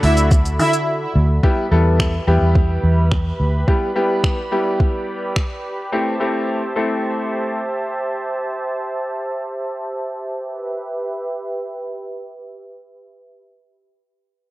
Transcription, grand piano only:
0.00 0.28 D3 medium
0.00 0.28 F#3 medium
0.00 0.29 A3 medium
0.00 0.29 D4 medium
0.00 0.29 F#4 medium
1.43 1.64 G3 medium
1.43 1.64 B3 medium
1.43 1.64 E4 medium
1.43 1.64 G4 medium
1.71 2.12 G3 medium
1.71 2.12 B3 medium
1.71 2.12 E4 medium
1.71 2.12 A4 medium
2.27 3.09 G3 medium
2.27 3.09 B3 medium
2.27 3.09 E4 medium
2.27 3.09 G4 loud
3.68 3.88 G3 medium
3.68 3.88 B3 medium
3.68 3.88 E4 medium
3.68 3.88 G4 medium
3.96 4.36 G3 medium
3.96 4.36 B3 medium
3.96 4.36 E4 medium
3.96 4.37 G4 medium
4.52 5.33 G3 medium
4.52 5.33 B3 medium
4.52 5.33 E4 medium
4.52 5.33 G4 medium
5.92 6.12 A3 medium
5.92 6.12 C4 medium
5.92 6.12 E4 medium
5.92 6.13 G4 medium
6.20 6.61 A3 medium
6.20 6.61 C4 medium
6.20 6.61 E4 medium
6.20 6.61 G4 medium
6.76 7.57 A3 medium
6.76 7.57 C4 medium
6.76 7.57 E4 medium
6.76 7.58 A4 medium

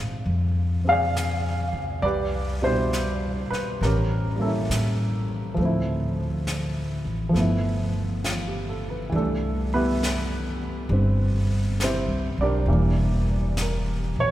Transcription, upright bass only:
0.00 0.24 G#2 medium
0.26 1.69 F2 medium
1.73 2.01 C#2 medium
2.02 3.46 C2 medium
3.51 muted upright bass stroke soft
3.81 4.65 A1 medium
4.70 5.54 A2 medium
5.57 7.01 D2 medium
7.05 7.33 A1 medium
7.34 9.09 G1 medium
9.12 10.86 C2 medium
10.89 12.04 G1 medium
12.08 12.36 C2 soft
12.38 12.65 B1 medium
12.66 14.10 E1 medium
14.15 14.31 A#1 medium

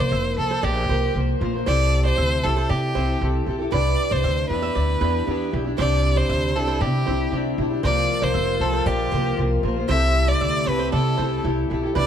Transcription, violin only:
0.00 0.38 C5 medium
0.39 0.66 A4 medium
0.64 1.15 G4 medium
1.68 2.03 D5 loud
2.05 2.45 C5 loud
2.44 2.71 A4 medium
2.70 3.21 G4 medium
3.72 4.13 D5 medium
4.12 4.49 C5 medium
4.50 5.49 B4 medium
5.79 6.18 D5 medium
6.17 6.57 C5 medium
6.56 6.83 A4 medium
6.81 7.33 G4 medium
7.85 8.25 D5 loud
8.23 8.63 C5 medium
8.61 8.88 A4 medium
8.86 9.38 G4 medium
9.89 10.30 E5 loud
10.28 10.70 D5 medium
10.68 10.93 B4 medium
10.93 11.41 A4 medium
11.97 12.07 D5 medium

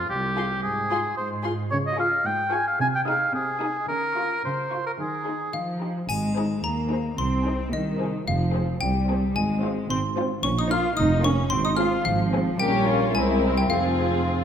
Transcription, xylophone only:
5.53 6.05 F5 soft
6.09 6.60 G#5 medium
6.64 7.14 A#5 medium
7.18 7.69 C6 medium
7.73 8.23 D#5 medium
8.28 8.78 F5 medium
8.81 9.31 G5 medium
9.36 9.86 G#5 medium
9.90 10.15 C6 medium
10.43 10.56 C#6 medium
10.59 10.70 D#6 medium
10.71 10.96 F6 medium
10.97 11.22 D#6 medium
11.24 11.50 C#6 medium
11.50 11.63 C6 medium
11.65 11.78 D#6 medium
11.77 12.03 F6 medium
12.05 12.56 F5 medium
12.60 13.11 G5 medium
13.15 13.53 G#5 medium
13.58 13.70 G5 medium
13.70 14.22 F5 medium

